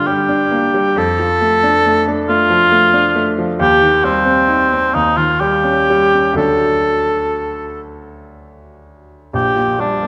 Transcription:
Already playing: grand piano G2 D3 G3 A#3 D4
0.07 grand piano G3, cor anglais G4
0.29 grand piano D4
0.51 grand piano A#3
0.74 grand piano G3
0.96 grand piano F2, cor anglais A4
1.19 grand piano F3
1.41 grand piano A3
1.63 grand piano D4
1.86 grand piano A3
2.08 grand piano D4
2.29 grand piano A3, cor anglais F4
2.50 grand piano F3
2.72 grand piano A3
2.93 grand piano D4
3.15 grand piano A3
3.38 grand piano F3
3.59 grand piano D#2, cor anglais G4
3.81 grand piano D#3
4.04 grand piano G3, cor anglais C4
4.26 grand piano C4
4.48 grand piano D#4
4.73 grand piano C4
4.94 grand piano D#2, cor anglais D#4
5.17 grand piano D#3, cor anglais F4
5.40 grand piano G3, cor anglais G4
5.64 grand piano C#4
5.90 grand piano G3
6.14 grand piano C#4
6.33 grand piano D2 F#3 A3 D4, cor anglais A4
9.33 grand piano A#1, cor anglais G4
9.56 grand piano A#2
9.79 grand piano G3, cor anglais D4
10.03 grand piano A#3

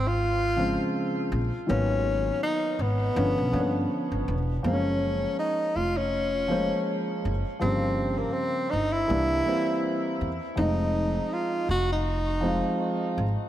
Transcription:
Already playing: upright bass G#1
0.07 tenor saxophone F4
0.56 grand piano C#3 F3 G#3 C4
1.32 upright bass A#1
1.67 upright bass G#1, grand piano D#3 F#3 A#3 B3, tenor saxophone C#4
2.43 tenor saxophone D#4
2.79 upright bass G#1, tenor saxophone B3
3.15 upright bass G1, grand piano D3 F3 B3 C#4
3.38 upright bass B1
3.52 upright bass G2, grand piano D3 F3 A#3 C#4
3.60 grand piano B3
4.12 upright bass G1
4.28 upright bass E1
4.63 upright bass F#1, grand piano F3 G#3 A#3 C4, tenor saxophone C#4
4.73 grand piano C#4
5.39 tenor saxophone D#4
5.76 upright bass F1, tenor saxophone F4
5.97 tenor saxophone C#4
6.48 grand piano F3 G#3 A#3 C5
7.25 upright bass F#1
7.59 upright bass G1, grand piano C#3 F3 G3 A#3, tenor saxophone C4
8.18 tenor saxophone A#3
8.33 tenor saxophone C4
8.70 upright bass G1, tenor saxophone D#4
8.92 tenor saxophone E4
9.08 upright bass C2, grand piano E3 G3 A#3 D4
9.45 grand piano E3 G3 A#3 C4
10.21 upright bass E2
10.55 upright bass F1, grand piano F3 G#3 C4 D#4, tenor saxophone D#4
11.33 tenor saxophone F4
11.69 upright bass F1, tenor saxophone F#4
11.92 tenor saxophone D#4
12.41 grand piano F3 G#3 C4 F4
13.18 upright bass G#1

